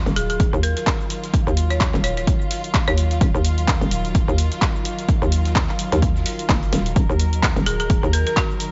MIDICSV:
0, 0, Header, 1, 5, 480
1, 0, Start_track
1, 0, Key_signature, -6, "minor"
1, 0, Tempo, 468750
1, 1368, Time_signature, 4, 2, 24, 8
1, 8924, End_track
2, 0, Start_track
2, 0, Title_t, "Marimba"
2, 0, Program_c, 0, 12
2, 168, Note_on_c, 0, 68, 90
2, 256, Note_off_c, 0, 68, 0
2, 305, Note_on_c, 0, 68, 75
2, 371, Note_off_c, 0, 68, 0
2, 648, Note_on_c, 0, 70, 90
2, 736, Note_off_c, 0, 70, 0
2, 785, Note_on_c, 0, 70, 77
2, 851, Note_off_c, 0, 70, 0
2, 1746, Note_on_c, 0, 73, 89
2, 1854, Note_off_c, 0, 73, 0
2, 2088, Note_on_c, 0, 73, 90
2, 2176, Note_off_c, 0, 73, 0
2, 2226, Note_on_c, 0, 73, 76
2, 2291, Note_off_c, 0, 73, 0
2, 2946, Note_on_c, 0, 73, 94
2, 3288, Note_off_c, 0, 73, 0
2, 7849, Note_on_c, 0, 68, 89
2, 7936, Note_off_c, 0, 68, 0
2, 7986, Note_on_c, 0, 68, 75
2, 8051, Note_off_c, 0, 68, 0
2, 8329, Note_on_c, 0, 70, 90
2, 8416, Note_off_c, 0, 70, 0
2, 8466, Note_on_c, 0, 70, 76
2, 8531, Note_off_c, 0, 70, 0
2, 8569, Note_on_c, 0, 66, 91
2, 8710, Note_off_c, 0, 66, 0
2, 8924, End_track
3, 0, Start_track
3, 0, Title_t, "String section"
3, 0, Program_c, 1, 48
3, 0, Note_on_c, 1, 51, 78
3, 0, Note_on_c, 1, 54, 69
3, 0, Note_on_c, 1, 65, 86
3, 7115, Note_off_c, 1, 65, 0
3, 7129, Note_on_c, 1, 70, 85
3, 8924, Note_off_c, 1, 51, 0
3, 8924, Note_off_c, 1, 54, 0
3, 8924, Note_off_c, 1, 70, 0
3, 8924, End_track
4, 0, Start_track
4, 0, Title_t, "FM bass"
4, 0, Program_c, 2, 39
4, 65, Note_on_c, 2, 27, 96
4, 523, Note_off_c, 2, 27, 0
4, 545, Note_on_c, 2, 39, 101
4, 763, Note_off_c, 2, 39, 0
4, 1506, Note_on_c, 2, 39, 100
4, 1964, Note_off_c, 2, 39, 0
4, 1985, Note_on_c, 2, 27, 98
4, 2443, Note_off_c, 2, 27, 0
4, 2945, Note_on_c, 2, 39, 97
4, 3272, Note_off_c, 2, 39, 0
4, 3288, Note_on_c, 2, 27, 100
4, 3403, Note_off_c, 2, 27, 0
4, 3426, Note_on_c, 2, 39, 102
4, 3884, Note_off_c, 2, 39, 0
4, 3905, Note_on_c, 2, 27, 102
4, 4363, Note_off_c, 2, 27, 0
4, 4386, Note_on_c, 2, 39, 98
4, 4603, Note_off_c, 2, 39, 0
4, 5345, Note_on_c, 2, 39, 101
4, 5803, Note_off_c, 2, 39, 0
4, 6066, Note_on_c, 2, 39, 96
4, 6392, Note_off_c, 2, 39, 0
4, 6648, Note_on_c, 2, 30, 95
4, 6872, Note_off_c, 2, 30, 0
4, 6888, Note_on_c, 2, 27, 98
4, 7112, Note_off_c, 2, 27, 0
4, 7128, Note_on_c, 2, 27, 99
4, 7243, Note_off_c, 2, 27, 0
4, 7266, Note_on_c, 2, 39, 98
4, 7724, Note_off_c, 2, 39, 0
4, 7745, Note_on_c, 2, 27, 100
4, 8203, Note_off_c, 2, 27, 0
4, 8225, Note_on_c, 2, 39, 100
4, 8443, Note_off_c, 2, 39, 0
4, 8924, End_track
5, 0, Start_track
5, 0, Title_t, "Drums"
5, 65, Note_on_c, 9, 42, 44
5, 72, Note_on_c, 9, 69, 23
5, 168, Note_off_c, 9, 42, 0
5, 168, Note_on_c, 9, 42, 67
5, 168, Note_on_c, 9, 46, 94
5, 174, Note_off_c, 9, 69, 0
5, 175, Note_on_c, 9, 69, 80
5, 270, Note_off_c, 9, 42, 0
5, 271, Note_off_c, 9, 46, 0
5, 277, Note_off_c, 9, 69, 0
5, 305, Note_on_c, 9, 42, 56
5, 312, Note_on_c, 9, 69, 34
5, 408, Note_off_c, 9, 42, 0
5, 408, Note_on_c, 9, 36, 118
5, 408, Note_on_c, 9, 42, 88
5, 414, Note_off_c, 9, 69, 0
5, 415, Note_on_c, 9, 69, 45
5, 510, Note_off_c, 9, 36, 0
5, 511, Note_off_c, 9, 42, 0
5, 517, Note_off_c, 9, 69, 0
5, 552, Note_on_c, 9, 69, 22
5, 648, Note_on_c, 9, 42, 69
5, 648, Note_on_c, 9, 46, 109
5, 654, Note_off_c, 9, 69, 0
5, 654, Note_on_c, 9, 69, 81
5, 750, Note_off_c, 9, 42, 0
5, 750, Note_off_c, 9, 46, 0
5, 757, Note_off_c, 9, 69, 0
5, 785, Note_on_c, 9, 38, 52
5, 786, Note_on_c, 9, 42, 55
5, 792, Note_on_c, 9, 69, 35
5, 888, Note_off_c, 9, 38, 0
5, 888, Note_off_c, 9, 42, 0
5, 888, Note_on_c, 9, 36, 106
5, 888, Note_on_c, 9, 38, 113
5, 888, Note_on_c, 9, 42, 90
5, 892, Note_on_c, 9, 39, 125
5, 895, Note_off_c, 9, 69, 0
5, 895, Note_on_c, 9, 69, 46
5, 991, Note_off_c, 9, 36, 0
5, 991, Note_off_c, 9, 38, 0
5, 991, Note_off_c, 9, 42, 0
5, 994, Note_off_c, 9, 39, 0
5, 997, Note_off_c, 9, 69, 0
5, 1032, Note_on_c, 9, 69, 23
5, 1128, Note_on_c, 9, 42, 69
5, 1128, Note_on_c, 9, 46, 90
5, 1134, Note_off_c, 9, 69, 0
5, 1134, Note_on_c, 9, 69, 77
5, 1231, Note_off_c, 9, 42, 0
5, 1231, Note_off_c, 9, 46, 0
5, 1237, Note_off_c, 9, 69, 0
5, 1266, Note_on_c, 9, 38, 41
5, 1266, Note_on_c, 9, 42, 57
5, 1272, Note_on_c, 9, 69, 34
5, 1368, Note_off_c, 9, 38, 0
5, 1368, Note_off_c, 9, 42, 0
5, 1368, Note_on_c, 9, 36, 127
5, 1368, Note_on_c, 9, 42, 67
5, 1374, Note_off_c, 9, 69, 0
5, 1375, Note_on_c, 9, 69, 43
5, 1471, Note_off_c, 9, 36, 0
5, 1471, Note_off_c, 9, 42, 0
5, 1477, Note_off_c, 9, 69, 0
5, 1512, Note_on_c, 9, 69, 21
5, 1608, Note_on_c, 9, 42, 66
5, 1608, Note_on_c, 9, 46, 106
5, 1614, Note_off_c, 9, 69, 0
5, 1614, Note_on_c, 9, 69, 75
5, 1710, Note_off_c, 9, 42, 0
5, 1710, Note_off_c, 9, 46, 0
5, 1717, Note_off_c, 9, 69, 0
5, 1745, Note_on_c, 9, 38, 57
5, 1745, Note_on_c, 9, 42, 52
5, 1752, Note_on_c, 9, 69, 32
5, 1848, Note_off_c, 9, 38, 0
5, 1848, Note_off_c, 9, 42, 0
5, 1848, Note_on_c, 9, 36, 113
5, 1848, Note_on_c, 9, 38, 115
5, 1848, Note_on_c, 9, 42, 67
5, 1852, Note_on_c, 9, 39, 127
5, 1854, Note_off_c, 9, 69, 0
5, 1854, Note_on_c, 9, 69, 44
5, 1950, Note_off_c, 9, 38, 0
5, 1951, Note_off_c, 9, 36, 0
5, 1951, Note_off_c, 9, 42, 0
5, 1954, Note_off_c, 9, 39, 0
5, 1957, Note_off_c, 9, 69, 0
5, 1985, Note_on_c, 9, 38, 48
5, 1989, Note_on_c, 9, 39, 40
5, 1992, Note_on_c, 9, 69, 23
5, 2088, Note_off_c, 9, 38, 0
5, 2088, Note_on_c, 9, 42, 69
5, 2088, Note_on_c, 9, 46, 95
5, 2091, Note_off_c, 9, 39, 0
5, 2094, Note_off_c, 9, 69, 0
5, 2094, Note_on_c, 9, 69, 77
5, 2190, Note_off_c, 9, 42, 0
5, 2190, Note_off_c, 9, 46, 0
5, 2197, Note_off_c, 9, 69, 0
5, 2225, Note_on_c, 9, 38, 43
5, 2225, Note_on_c, 9, 42, 54
5, 2232, Note_on_c, 9, 69, 32
5, 2328, Note_off_c, 9, 38, 0
5, 2328, Note_off_c, 9, 42, 0
5, 2328, Note_on_c, 9, 36, 123
5, 2328, Note_on_c, 9, 42, 91
5, 2334, Note_off_c, 9, 69, 0
5, 2334, Note_on_c, 9, 69, 44
5, 2431, Note_off_c, 9, 36, 0
5, 2431, Note_off_c, 9, 42, 0
5, 2437, Note_off_c, 9, 69, 0
5, 2472, Note_on_c, 9, 69, 22
5, 2568, Note_on_c, 9, 46, 79
5, 2574, Note_off_c, 9, 69, 0
5, 2574, Note_on_c, 9, 69, 77
5, 2670, Note_off_c, 9, 46, 0
5, 2677, Note_off_c, 9, 69, 0
5, 2705, Note_on_c, 9, 42, 54
5, 2712, Note_on_c, 9, 69, 33
5, 2808, Note_off_c, 9, 42, 0
5, 2808, Note_on_c, 9, 36, 107
5, 2808, Note_on_c, 9, 38, 117
5, 2808, Note_on_c, 9, 42, 89
5, 2811, Note_on_c, 9, 39, 126
5, 2814, Note_off_c, 9, 69, 0
5, 2814, Note_on_c, 9, 69, 44
5, 2910, Note_off_c, 9, 38, 0
5, 2910, Note_off_c, 9, 42, 0
5, 2911, Note_off_c, 9, 36, 0
5, 2914, Note_off_c, 9, 39, 0
5, 2917, Note_off_c, 9, 69, 0
5, 2945, Note_on_c, 9, 42, 46
5, 2952, Note_on_c, 9, 69, 22
5, 3048, Note_off_c, 9, 42, 0
5, 3048, Note_on_c, 9, 42, 70
5, 3048, Note_on_c, 9, 46, 95
5, 3054, Note_off_c, 9, 69, 0
5, 3054, Note_on_c, 9, 69, 75
5, 3150, Note_off_c, 9, 42, 0
5, 3150, Note_off_c, 9, 46, 0
5, 3156, Note_off_c, 9, 69, 0
5, 3185, Note_on_c, 9, 38, 48
5, 3185, Note_on_c, 9, 42, 53
5, 3191, Note_on_c, 9, 69, 33
5, 3287, Note_off_c, 9, 38, 0
5, 3287, Note_off_c, 9, 42, 0
5, 3288, Note_on_c, 9, 36, 127
5, 3288, Note_on_c, 9, 42, 62
5, 3294, Note_off_c, 9, 69, 0
5, 3294, Note_on_c, 9, 69, 44
5, 3390, Note_off_c, 9, 36, 0
5, 3390, Note_off_c, 9, 42, 0
5, 3396, Note_off_c, 9, 69, 0
5, 3432, Note_on_c, 9, 69, 21
5, 3528, Note_on_c, 9, 42, 69
5, 3528, Note_on_c, 9, 46, 113
5, 3534, Note_off_c, 9, 69, 0
5, 3534, Note_on_c, 9, 69, 74
5, 3630, Note_off_c, 9, 42, 0
5, 3630, Note_off_c, 9, 46, 0
5, 3637, Note_off_c, 9, 69, 0
5, 3665, Note_on_c, 9, 42, 51
5, 3671, Note_on_c, 9, 69, 32
5, 3767, Note_off_c, 9, 42, 0
5, 3768, Note_on_c, 9, 36, 109
5, 3768, Note_on_c, 9, 38, 117
5, 3768, Note_on_c, 9, 42, 91
5, 3771, Note_on_c, 9, 39, 122
5, 3774, Note_off_c, 9, 69, 0
5, 3774, Note_on_c, 9, 69, 44
5, 3870, Note_off_c, 9, 38, 0
5, 3870, Note_off_c, 9, 42, 0
5, 3871, Note_off_c, 9, 36, 0
5, 3874, Note_off_c, 9, 39, 0
5, 3876, Note_off_c, 9, 69, 0
5, 3905, Note_on_c, 9, 42, 44
5, 3912, Note_on_c, 9, 69, 21
5, 4008, Note_off_c, 9, 42, 0
5, 4008, Note_on_c, 9, 42, 71
5, 4008, Note_on_c, 9, 46, 99
5, 4014, Note_off_c, 9, 69, 0
5, 4014, Note_on_c, 9, 69, 77
5, 4110, Note_off_c, 9, 42, 0
5, 4110, Note_off_c, 9, 46, 0
5, 4117, Note_off_c, 9, 69, 0
5, 4145, Note_on_c, 9, 42, 53
5, 4152, Note_on_c, 9, 69, 33
5, 4248, Note_off_c, 9, 42, 0
5, 4248, Note_on_c, 9, 36, 126
5, 4248, Note_on_c, 9, 42, 67
5, 4254, Note_off_c, 9, 69, 0
5, 4254, Note_on_c, 9, 69, 43
5, 4350, Note_off_c, 9, 36, 0
5, 4350, Note_off_c, 9, 42, 0
5, 4357, Note_off_c, 9, 69, 0
5, 4392, Note_on_c, 9, 69, 21
5, 4488, Note_on_c, 9, 42, 68
5, 4488, Note_on_c, 9, 46, 116
5, 4494, Note_off_c, 9, 69, 0
5, 4494, Note_on_c, 9, 69, 79
5, 4590, Note_off_c, 9, 42, 0
5, 4590, Note_off_c, 9, 46, 0
5, 4597, Note_off_c, 9, 69, 0
5, 4625, Note_on_c, 9, 38, 50
5, 4625, Note_on_c, 9, 42, 53
5, 4632, Note_on_c, 9, 69, 33
5, 4728, Note_off_c, 9, 38, 0
5, 4728, Note_off_c, 9, 42, 0
5, 4728, Note_on_c, 9, 36, 113
5, 4728, Note_on_c, 9, 38, 113
5, 4728, Note_on_c, 9, 42, 65
5, 4732, Note_on_c, 9, 39, 125
5, 4734, Note_off_c, 9, 69, 0
5, 4735, Note_on_c, 9, 69, 43
5, 4830, Note_off_c, 9, 36, 0
5, 4830, Note_off_c, 9, 38, 0
5, 4831, Note_off_c, 9, 42, 0
5, 4834, Note_off_c, 9, 39, 0
5, 4837, Note_off_c, 9, 69, 0
5, 4872, Note_on_c, 9, 69, 21
5, 4968, Note_on_c, 9, 42, 70
5, 4968, Note_on_c, 9, 46, 97
5, 4974, Note_off_c, 9, 69, 0
5, 4974, Note_on_c, 9, 69, 73
5, 5070, Note_off_c, 9, 42, 0
5, 5070, Note_off_c, 9, 46, 0
5, 5077, Note_off_c, 9, 69, 0
5, 5105, Note_on_c, 9, 38, 42
5, 5106, Note_on_c, 9, 42, 54
5, 5112, Note_on_c, 9, 69, 33
5, 5208, Note_off_c, 9, 38, 0
5, 5208, Note_off_c, 9, 42, 0
5, 5208, Note_on_c, 9, 36, 122
5, 5208, Note_on_c, 9, 42, 93
5, 5214, Note_off_c, 9, 69, 0
5, 5214, Note_on_c, 9, 69, 43
5, 5310, Note_off_c, 9, 36, 0
5, 5310, Note_off_c, 9, 42, 0
5, 5317, Note_off_c, 9, 69, 0
5, 5352, Note_on_c, 9, 69, 21
5, 5448, Note_on_c, 9, 42, 68
5, 5448, Note_on_c, 9, 46, 107
5, 5454, Note_off_c, 9, 69, 0
5, 5455, Note_on_c, 9, 69, 78
5, 5550, Note_off_c, 9, 42, 0
5, 5551, Note_off_c, 9, 46, 0
5, 5557, Note_off_c, 9, 69, 0
5, 5585, Note_on_c, 9, 38, 60
5, 5585, Note_on_c, 9, 42, 49
5, 5592, Note_on_c, 9, 69, 33
5, 5688, Note_off_c, 9, 38, 0
5, 5688, Note_off_c, 9, 42, 0
5, 5688, Note_on_c, 9, 36, 110
5, 5688, Note_on_c, 9, 38, 119
5, 5688, Note_on_c, 9, 42, 65
5, 5692, Note_on_c, 9, 39, 122
5, 5694, Note_off_c, 9, 69, 0
5, 5695, Note_on_c, 9, 69, 44
5, 5790, Note_off_c, 9, 36, 0
5, 5790, Note_off_c, 9, 38, 0
5, 5791, Note_off_c, 9, 42, 0
5, 5794, Note_off_c, 9, 39, 0
5, 5797, Note_off_c, 9, 69, 0
5, 5825, Note_on_c, 9, 38, 49
5, 5829, Note_on_c, 9, 39, 37
5, 5832, Note_on_c, 9, 69, 21
5, 5928, Note_off_c, 9, 38, 0
5, 5928, Note_on_c, 9, 42, 68
5, 5928, Note_on_c, 9, 46, 99
5, 5932, Note_off_c, 9, 39, 0
5, 5934, Note_off_c, 9, 69, 0
5, 5935, Note_on_c, 9, 69, 77
5, 6030, Note_off_c, 9, 42, 0
5, 6031, Note_off_c, 9, 46, 0
5, 6037, Note_off_c, 9, 69, 0
5, 6065, Note_on_c, 9, 38, 43
5, 6066, Note_on_c, 9, 42, 50
5, 6072, Note_on_c, 9, 69, 33
5, 6168, Note_off_c, 9, 38, 0
5, 6168, Note_off_c, 9, 42, 0
5, 6168, Note_on_c, 9, 36, 121
5, 6168, Note_on_c, 9, 42, 89
5, 6174, Note_off_c, 9, 69, 0
5, 6175, Note_on_c, 9, 69, 43
5, 6271, Note_off_c, 9, 36, 0
5, 6271, Note_off_c, 9, 42, 0
5, 6277, Note_off_c, 9, 69, 0
5, 6305, Note_on_c, 9, 38, 42
5, 6312, Note_on_c, 9, 69, 21
5, 6407, Note_off_c, 9, 38, 0
5, 6408, Note_on_c, 9, 46, 79
5, 6414, Note_off_c, 9, 69, 0
5, 6414, Note_on_c, 9, 69, 79
5, 6510, Note_off_c, 9, 46, 0
5, 6517, Note_off_c, 9, 69, 0
5, 6545, Note_on_c, 9, 42, 50
5, 6552, Note_on_c, 9, 69, 33
5, 6648, Note_off_c, 9, 42, 0
5, 6648, Note_on_c, 9, 36, 110
5, 6648, Note_on_c, 9, 38, 120
5, 6648, Note_on_c, 9, 42, 89
5, 6652, Note_on_c, 9, 39, 121
5, 6654, Note_off_c, 9, 69, 0
5, 6654, Note_on_c, 9, 69, 44
5, 6751, Note_off_c, 9, 36, 0
5, 6751, Note_off_c, 9, 38, 0
5, 6751, Note_off_c, 9, 42, 0
5, 6754, Note_off_c, 9, 39, 0
5, 6757, Note_off_c, 9, 69, 0
5, 6786, Note_on_c, 9, 42, 44
5, 6792, Note_on_c, 9, 69, 22
5, 6888, Note_off_c, 9, 42, 0
5, 6888, Note_on_c, 9, 38, 105
5, 6888, Note_on_c, 9, 42, 79
5, 6888, Note_on_c, 9, 46, 96
5, 6894, Note_off_c, 9, 69, 0
5, 6894, Note_on_c, 9, 69, 77
5, 6990, Note_off_c, 9, 46, 0
5, 6991, Note_off_c, 9, 38, 0
5, 6991, Note_off_c, 9, 42, 0
5, 6996, Note_off_c, 9, 69, 0
5, 7025, Note_on_c, 9, 42, 50
5, 7026, Note_off_c, 9, 42, 0
5, 7026, Note_on_c, 9, 42, 40
5, 7031, Note_on_c, 9, 69, 33
5, 7128, Note_off_c, 9, 42, 0
5, 7128, Note_on_c, 9, 36, 121
5, 7128, Note_on_c, 9, 42, 65
5, 7129, Note_off_c, 9, 42, 0
5, 7129, Note_on_c, 9, 42, 94
5, 7134, Note_off_c, 9, 69, 0
5, 7134, Note_on_c, 9, 69, 45
5, 7231, Note_off_c, 9, 36, 0
5, 7231, Note_off_c, 9, 42, 0
5, 7236, Note_off_c, 9, 69, 0
5, 7271, Note_on_c, 9, 69, 22
5, 7368, Note_on_c, 9, 42, 67
5, 7368, Note_on_c, 9, 46, 104
5, 7374, Note_off_c, 9, 69, 0
5, 7374, Note_on_c, 9, 69, 77
5, 7470, Note_off_c, 9, 46, 0
5, 7471, Note_off_c, 9, 42, 0
5, 7477, Note_off_c, 9, 69, 0
5, 7505, Note_on_c, 9, 42, 50
5, 7511, Note_on_c, 9, 69, 33
5, 7607, Note_off_c, 9, 42, 0
5, 7608, Note_on_c, 9, 36, 104
5, 7608, Note_on_c, 9, 42, 67
5, 7609, Note_off_c, 9, 42, 0
5, 7609, Note_on_c, 9, 38, 116
5, 7609, Note_on_c, 9, 42, 91
5, 7612, Note_on_c, 9, 39, 119
5, 7614, Note_off_c, 9, 69, 0
5, 7614, Note_on_c, 9, 69, 46
5, 7711, Note_off_c, 9, 36, 0
5, 7711, Note_off_c, 9, 38, 0
5, 7711, Note_off_c, 9, 42, 0
5, 7714, Note_off_c, 9, 39, 0
5, 7717, Note_off_c, 9, 69, 0
5, 7746, Note_on_c, 9, 42, 45
5, 7752, Note_on_c, 9, 69, 22
5, 7848, Note_off_c, 9, 42, 0
5, 7848, Note_on_c, 9, 42, 68
5, 7848, Note_on_c, 9, 46, 95
5, 7854, Note_off_c, 9, 69, 0
5, 7854, Note_on_c, 9, 69, 81
5, 7950, Note_off_c, 9, 46, 0
5, 7951, Note_off_c, 9, 42, 0
5, 7957, Note_off_c, 9, 69, 0
5, 7985, Note_on_c, 9, 42, 51
5, 7992, Note_on_c, 9, 69, 33
5, 8088, Note_off_c, 9, 42, 0
5, 8088, Note_on_c, 9, 36, 119
5, 8088, Note_on_c, 9, 42, 91
5, 8094, Note_off_c, 9, 69, 0
5, 8094, Note_on_c, 9, 69, 46
5, 8190, Note_off_c, 9, 42, 0
5, 8191, Note_off_c, 9, 36, 0
5, 8197, Note_off_c, 9, 69, 0
5, 8232, Note_on_c, 9, 69, 22
5, 8328, Note_on_c, 9, 42, 68
5, 8328, Note_on_c, 9, 46, 110
5, 8334, Note_off_c, 9, 69, 0
5, 8334, Note_on_c, 9, 69, 81
5, 8430, Note_off_c, 9, 42, 0
5, 8430, Note_off_c, 9, 46, 0
5, 8437, Note_off_c, 9, 69, 0
5, 8465, Note_on_c, 9, 42, 51
5, 8466, Note_on_c, 9, 38, 51
5, 8471, Note_on_c, 9, 69, 35
5, 8567, Note_off_c, 9, 42, 0
5, 8567, Note_on_c, 9, 42, 64
5, 8568, Note_off_c, 9, 38, 0
5, 8568, Note_off_c, 9, 42, 0
5, 8568, Note_on_c, 9, 36, 107
5, 8568, Note_on_c, 9, 38, 118
5, 8568, Note_on_c, 9, 42, 87
5, 8571, Note_on_c, 9, 39, 120
5, 8574, Note_off_c, 9, 69, 0
5, 8574, Note_on_c, 9, 69, 45
5, 8670, Note_off_c, 9, 38, 0
5, 8670, Note_off_c, 9, 42, 0
5, 8671, Note_off_c, 9, 36, 0
5, 8673, Note_off_c, 9, 39, 0
5, 8676, Note_off_c, 9, 69, 0
5, 8711, Note_on_c, 9, 69, 22
5, 8807, Note_on_c, 9, 46, 92
5, 8808, Note_on_c, 9, 42, 68
5, 8813, Note_off_c, 9, 69, 0
5, 8814, Note_on_c, 9, 69, 78
5, 8910, Note_off_c, 9, 46, 0
5, 8911, Note_off_c, 9, 42, 0
5, 8916, Note_off_c, 9, 69, 0
5, 8924, End_track
0, 0, End_of_file